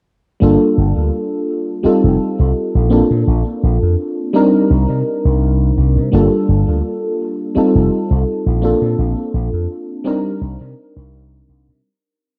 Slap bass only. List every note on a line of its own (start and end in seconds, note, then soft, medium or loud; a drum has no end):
0.41 0.56 G1 medium
0.78 0.91 G1 medium
0.97 1.09 D2 medium
1.85 muted slap bass stroke soft
2.04 2.16 F1 medium
2.39 2.52 C2 medium
2.75 3.01 A#1 medium
3.11 3.23 A#2 medium
3.27 3.41 A#1 loud
3.63 3.77 A#1 medium
3.82 3.95 F2 medium
4.70 4.84 C2 medium
4.89 5.02 C3 medium
5.25 5.70 C2 loud
5.77 5.98 C2 medium
5.96 6.09 C3 medium
6.13 6.27 G1 loud
6.49 6.63 G1 medium
6.68 6.80 D2 medium
7.56 muted slap bass stroke soft
7.75 7.87 F1 medium
8.11 8.23 C2 medium
8.46 8.72 A#1 medium
8.82 8.94 A#2 medium
8.98 9.13 A#1 loud
9.34 9.48 A#1 medium
9.53 9.66 F2 medium
10.41 10.56 C2 loud
10.61 10.73 C3 medium
10.96 11.42 C2 medium
11.49 11.70 C2 loud
11.68 11.80 C3 medium